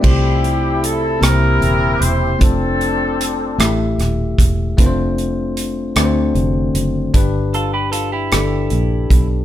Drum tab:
CC |x-----|------|------|------|
HH |-xxxxx|xxxxxx|xxxxxx|xxxxxx|
SD |---r--|---rr-|---r--|---r--|
BD |o-----|o----o|o-----|o----o|